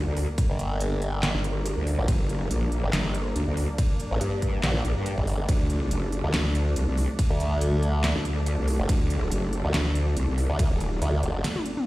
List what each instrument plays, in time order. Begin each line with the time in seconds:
Already playing: string section G3 A#3 D4 A#4 D5
0.07 wobble bass D2
0.17 open hi-hat
0.38 kick, closed hi-hat, ride
0.50 wobble bass G1
0.59 closed hi-hat
0.81 closed hi-hat, ride
1.02 closed hi-hat
1.23 snare, clap, closed hi-hat, ride
1.35 wobble bass G1
1.44 closed hi-hat
1.66 closed hi-hat, ride
1.77 wobble bass D2
1.87 open hi-hat
1.99 wobble bass A#1
2.08 wobble bass G1, kick, closed hi-hat, ride
2.29 closed hi-hat
2.51 wobble bass A#1, closed hi-hat, ride
2.72 closed hi-hat
2.84 wobble bass G1
2.93 wobble bass G1, snare, clap, closed hi-hat, ride
3.15 closed hi-hat
3.36 wobble bass D2, closed hi-hat, ride
3.47 wobble bass D2
3.57 open hi-hat
3.78 kick, closed hi-hat, ride
4.00 closed hi-hat
4.11 wobble bass A1
4.21 wobble bass G2, closed hi-hat, ride
4.42 kick, closed hi-hat
4.63 wobble bass A#1, snare, clap, closed hi-hat, ride
4.85 wobble bass A#1, closed hi-hat
4.96 wobble bass G2
5.06 closed hi-hat, ride
5.18 wobble bass G1, kick
5.27 open hi-hat
5.49 wobble bass D2, string section F#3 A3 A4, kick, closed hi-hat, ride
5.70 closed hi-hat
5.91 wobble bass F#1, closed hi-hat, ride
6.12 closed hi-hat
6.24 wobble bass D2
6.34 wobble bass D2, snare, clap, closed hi-hat, ride
6.55 closed hi-hat
6.76 wobble bass C2, closed hi-hat, ride
6.88 wobble bass C2
6.98 open hi-hat
7.19 kick, closed hi-hat, ride
7.30 wobble bass D2
7.40 closed hi-hat
7.61 closed hi-hat, ride
7.83 closed hi-hat
8.04 snare, clap, closed hi-hat, ride
8.16 wobble bass D2
8.25 closed hi-hat
8.46 closed hi-hat, ride
8.58 wobble bass C2
8.68 open hi-hat
8.79 wobble bass F#1
8.89 wobble bass D2, kick, closed hi-hat, ride
9.10 closed hi-hat
9.32 wobble bass F#1, closed hi-hat, ride
9.53 closed hi-hat
9.65 wobble bass D2
9.74 wobble bass D2, snare, clap, closed hi-hat, ride
9.95 closed hi-hat
10.17 wobble bass C2, closed hi-hat, ride
10.28 wobble bass C2
10.38 open hi-hat
10.50 wobble bass D2
10.59 kick, closed hi-hat, ride
10.71 wobble bass D#1
10.80 closed hi-hat
11.02 wobble bass D2, closed hi-hat, ride
11.23 wobble bass F#1, closed hi-hat
11.44 snare, closed hi-hat, ride
11.56 high tom
11.66 closed hi-hat
11.77 mid tom